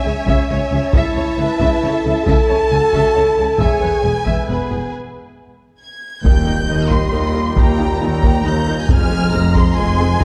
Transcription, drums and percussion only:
0.28 taiko
0.94 taiko
1.60 taiko
2.27 taiko
2.93 taiko
3.59 taiko
4.26 taiko
6.24 taiko
6.91 taiko
7.56 taiko
8.23 taiko
8.89 taiko
9.55 taiko

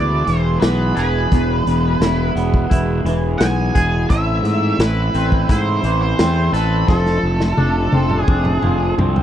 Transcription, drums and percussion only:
0.27 closed hi-hat
0.62 snare, closed hi-hat
0.97 closed hi-hat
1.32 kick, closed hi-hat
1.67 closed hi-hat
2.01 snare, closed hi-hat
2.37 closed hi-hat
2.54 kick
2.71 kick, closed hi-hat
3.06 closed hi-hat
3.40 snare, closed hi-hat
3.75 kick, closed hi-hat
4.10 kick, closed hi-hat
4.45 closed hi-hat
4.80 snare, closed hi-hat
5.14 closed hi-hat
5.32 kick
5.49 kick, closed hi-hat
5.84 closed hi-hat
6.19 snare, closed hi-hat
6.54 closed hi-hat
6.88 kick, snare
7.06 snare
7.40 snare
7.57 high tom
7.92 high tom
8.10 mid tom
8.28 kick
8.45 mid tom
8.63 mid tom
8.99 mid tom
9.16 floor tom

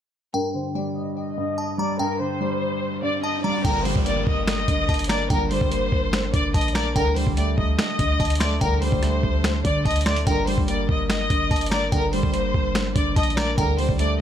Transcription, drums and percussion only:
3.65 kick, closed hi-hat
3.85 open hi-hat
3.96 kick
4.06 closed hi-hat
4.27 kick
4.48 finger snap, snare, closed hi-hat
4.68 kick, closed hi-hat
4.89 kick, closed hi-hat
4.94 closed hi-hat
4.99 closed hi-hat
5.04 closed hi-hat
5.09 finger snap, snare, closed hi-hat
5.30 kick, closed hi-hat
5.51 open hi-hat
5.61 kick
5.72 closed hi-hat
5.92 kick
6.13 finger snap, snare, closed hi-hat
6.34 kick, closed hi-hat
6.54 kick, closed hi-hat
6.61 closed hi-hat
6.68 closed hi-hat
6.75 finger snap, snare, closed hi-hat
6.96 kick, closed hi-hat
7.16 open hi-hat
7.27 kick
7.37 closed hi-hat
7.58 kick
7.79 finger snap, snare, closed hi-hat
7.99 kick, closed hi-hat
8.20 kick, closed hi-hat
8.25 closed hi-hat
8.30 closed hi-hat
8.35 closed hi-hat
8.41 finger snap, snare, closed hi-hat
8.61 kick, closed hi-hat
8.82 open hi-hat
8.92 kick
9.03 cross-stick, closed hi-hat
9.23 kick
9.44 finger snap, snare, closed hi-hat
9.65 kick, closed hi-hat
9.85 kick, closed hi-hat
9.91 closed hi-hat
9.96 closed hi-hat
10.01 closed hi-hat
10.06 finger snap, cross-stick, snare, closed hi-hat
10.16 closed hi-hat
10.27 kick, closed hi-hat
10.47 open hi-hat
10.58 kick
10.68 closed hi-hat
10.89 kick
11.10 finger snap, snare, closed hi-hat
11.30 kick, closed hi-hat
11.51 kick, closed hi-hat
11.56 closed hi-hat
11.61 closed hi-hat
11.66 closed hi-hat
11.72 finger snap, snare, closed hi-hat
11.92 kick, closed hi-hat
12.13 open hi-hat
12.23 kick
12.34 closed hi-hat
12.54 kick
12.75 finger snap, snare, closed hi-hat
12.96 kick, closed hi-hat
13.16 kick, closed hi-hat
13.23 closed hi-hat
13.30 closed hi-hat
13.37 finger snap, snare, closed hi-hat
13.58 kick, closed hi-hat
13.79 open hi-hat
13.89 kick
13.99 closed hi-hat

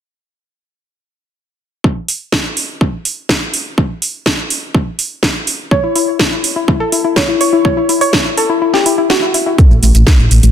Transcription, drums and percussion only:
1.84 kick
2.08 open hi-hat
2.32 kick, snare
2.57 open hi-hat
2.81 kick
3.05 open hi-hat
3.29 kick, snare
3.54 open hi-hat
3.78 kick
4.02 open hi-hat
4.26 kick, snare
4.50 open hi-hat
4.75 kick
4.99 open hi-hat
5.23 kick, snare
5.47 open hi-hat
5.71 kick
5.96 open hi-hat
6.19 kick, snare
6.44 open hi-hat
6.68 kick
6.92 open hi-hat
7.16 kick, snare
7.41 open hi-hat
7.65 kick
7.89 open hi-hat
8.01 open hi-hat
8.13 kick, snare
8.37 open hi-hat
8.74 snare
8.86 open hi-hat
9.10 snare
9.34 open hi-hat
9.58 kick, closed hi-hat, shaker
9.71 shaker
9.83 open hi-hat, shaker
9.95 closed hi-hat, shaker
10.07 kick, snare, closed hi-hat, shaker
10.20 shaker
10.31 open hi-hat, shaker
10.43 closed hi-hat, shaker

